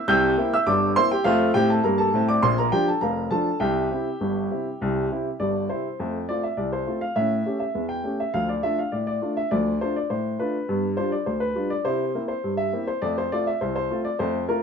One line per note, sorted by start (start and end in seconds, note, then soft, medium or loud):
0.08 0.33 C2 loud
0.08 0.33 C3 loud
0.08 0.50 G5 medium
0.08 0.50 E6 medium
0.08 0.50 G6 loud
0.38 0.54 A#3 medium
0.38 0.55 C4 medium
0.38 0.55 E4 medium
0.54 0.67 E5 medium
0.54 0.68 E6 loud
0.67 0.92 G1 medium
0.67 0.92 G2 medium
0.67 0.95 D5 medium
0.67 0.90 D6 loud
0.96 1.12 A#3 medium
0.96 1.13 C4 medium
0.96 1.13 E4 medium
0.96 1.10 C5 medium
0.96 1.11 C6 loud
1.11 1.26 G4 medium
1.11 1.26 G5 medium
1.24 1.49 F2 medium
1.24 1.50 A3 loud
1.24 1.53 F4 medium
1.24 1.53 C5 medium
1.24 1.49 F5 loud
1.54 1.78 A2 medium
1.54 1.79 C4 medium
1.54 1.69 G4 medium
1.54 1.69 G5 loud
1.70 1.84 A4 medium
1.70 1.85 A5 medium
1.84 2.08 G2 medium
1.84 2.09 A#3 medium
1.84 1.98 A#4 medium
1.84 1.99 A#5 medium
1.98 2.27 A4 medium
1.98 2.22 A5 medium
2.14 2.37 A2 medium
2.14 2.38 C4 medium
2.28 2.43 D5 medium
2.28 2.43 D6 loud
2.43 2.68 A#1 medium
2.43 2.68 A#2 medium
2.43 2.57 C5 medium
2.43 2.58 C6 medium
2.58 2.73 A#4 medium
2.58 2.73 A#5 medium
2.72 2.89 F3 medium
2.72 2.89 D4 medium
2.72 2.90 F4 medium
2.72 2.87 G4 medium
2.72 2.87 G5 loud
2.88 3.02 A4 soft
2.88 3.03 A5 medium
3.01 3.27 F1 medium
3.01 3.27 F2 medium
3.01 3.30 A#4 medium
3.01 3.30 F5 medium
3.01 3.25 A#5 medium
3.31 3.48 F3 medium
3.31 3.48 D4 soft
3.31 3.48 F4 soft
3.31 3.60 A4 medium
3.31 3.60 A5 medium
3.60 3.86 C2 medium
3.60 3.86 C3 medium
3.60 5.35 G4 medium
3.60 5.35 E5 medium
3.60 5.35 G5 medium
3.91 4.08 C3 soft
3.91 4.08 C4 medium
3.91 4.08 E4 medium
4.21 4.46 G1 medium
4.21 4.46 G2 medium
4.51 4.67 C3 soft
4.51 4.67 C4 soft
4.51 4.68 E4 soft
4.81 5.06 C2 medium
4.81 5.06 C3 medium
5.12 5.27 C3 medium
5.12 5.28 C4 soft
5.12 5.28 E4 medium
5.40 5.65 G1 soft
5.40 5.65 G2 medium
5.40 5.68 D5 medium
5.69 5.86 C3 soft
5.69 5.86 C4 soft
5.69 5.87 E4 soft
5.69 6.16 C5 medium
6.00 6.24 F2 medium
6.00 6.17 A3 soft
6.29 6.45 A3 soft
6.29 6.45 C4 soft
6.29 6.46 F4 soft
6.29 6.43 D5 medium
6.43 6.58 E5 medium
6.57 6.82 C2 medium
6.57 6.72 D5 medium
6.73 7.00 C5 medium
6.87 7.03 A3 soft
6.87 7.03 C4 soft
6.87 7.04 F4 soft
7.01 7.16 F5 medium
7.16 7.41 A2 medium
7.16 7.34 C#4 soft
7.16 7.58 E5 medium
7.46 7.62 A3 soft
7.46 7.62 C#4 soft
7.46 7.62 G4 soft
7.60 7.83 E5 medium
7.75 8.00 E2 soft
7.89 8.17 G5 medium
8.04 8.20 A3 soft
8.04 8.20 C#4 soft
8.04 8.21 G4 soft
8.20 8.34 E5 medium
8.34 8.59 D2 medium
8.34 8.52 F3 soft
8.34 8.48 F5 medium
8.49 8.63 D5 medium
8.63 8.79 A3 soft
8.63 8.80 D4 soft
8.63 8.80 F4 soft
8.63 8.78 E5 medium
8.79 8.93 F5 medium
8.92 9.18 A2 soft
8.92 9.06 D5 medium
9.07 9.35 D5 medium
9.22 9.38 A3 soft
9.22 9.38 D4 soft
9.22 9.38 F4 soft
9.37 9.51 E5 medium
9.51 9.76 D2 medium
9.51 9.69 F3 soft
9.51 9.79 D5 medium
9.81 9.97 A3 soft
9.81 9.98 D4 soft
9.81 9.98 F4 soft
9.81 9.96 C5 medium
9.96 10.11 D5 medium
10.10 10.35 A2 soft
10.10 10.38 C5 medium
10.39 10.56 A3 soft
10.39 10.56 D4 soft
10.39 10.56 F4 soft
10.39 10.86 B4 medium
10.69 10.94 G2 medium
10.69 10.86 B3 soft
10.97 11.14 G3 soft
10.97 11.14 D4 soft
10.97 11.14 F4 soft
10.97 11.12 C5 medium
11.12 11.27 D5 medium
11.26 11.52 D2 soft
11.26 11.41 C5 medium
11.40 11.69 B4 medium
11.55 11.71 G3 soft
11.55 11.72 D4 soft
11.55 11.72 F4 soft
11.70 11.85 D5 medium
11.85 12.10 C3 medium
11.85 12.03 E4 medium
11.85 12.20 C5 medium
12.15 12.31 A#3 soft
12.15 12.31 C4 soft
12.15 12.31 E4 soft
12.28 12.52 C5 medium
12.44 12.69 G2 medium
12.57 12.86 E5 medium
12.73 12.89 A#3 soft
12.73 12.89 C4 soft
12.73 12.90 E4 soft
12.87 13.02 C5 medium
13.02 13.27 F2 medium
13.02 13.20 A3 soft
13.02 13.17 D5 medium
13.18 13.32 C5 medium
13.32 13.48 A3 soft
13.32 13.49 C4 soft
13.32 13.49 F4 medium
13.32 13.47 D5 medium
13.47 13.61 E5 medium
13.61 13.86 C2 soft
13.61 13.74 C5 medium
13.76 13.99 C5 medium
13.91 14.07 A3 soft
13.91 14.07 C4 soft
13.91 14.07 F4 medium
14.05 14.20 D5 medium
14.19 14.45 F2 medium
14.19 14.37 A3 soft
14.19 14.43 C5 medium
14.49 14.63 A3 soft
14.49 14.63 C4 soft
14.49 14.63 F4 medium
14.49 14.63 A#4 medium